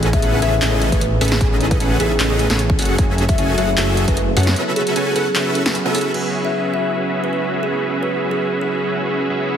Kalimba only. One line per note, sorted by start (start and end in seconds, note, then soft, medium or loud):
0.13 0.40 E5 loud
0.42 0.82 E5 medium
0.92 0.98 B4 medium
1.01 1.08 B4 medium
1.31 1.40 G#4 medium
1.71 1.80 B4 medium
2.00 2.10 G#4 medium
2.30 2.70 G#4 medium
3.29 3.56 E5 loud
3.58 3.97 E5 medium
4.08 4.14 B4 medium
4.17 4.24 B4 medium
4.37 4.47 C#5 medium
4.76 5.04 G#4 medium
5.07 5.14 G#4 medium
5.16 5.26 G#4 medium
5.95 6.14 G#4 medium
6.45 6.72 E5 medium
6.74 7.13 E5 medium
7.24 7.30 B4 medium
7.33 7.40 B4 medium
7.63 7.72 G#4 medium
8.03 8.12 B4 medium
8.31 8.42 G#4 medium
8.61 9.01 G#4 medium